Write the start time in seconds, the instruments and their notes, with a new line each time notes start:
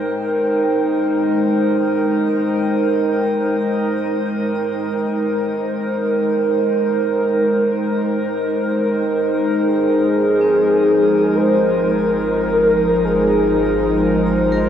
Already playing: ambient pad G#3 D#4 A#4 C5 G5
9.67 analog synth bass G#1, synth drone F3 D#4, soft synth lead G#4
10.41 vibraphone C4
11.07 ambient pad F4
11.35 soft synth lead C5
11.91 soft synth lead A#4
13.05 soft synth lead G#4
14.19 soft synth lead C5
14.52 vibraphone A#4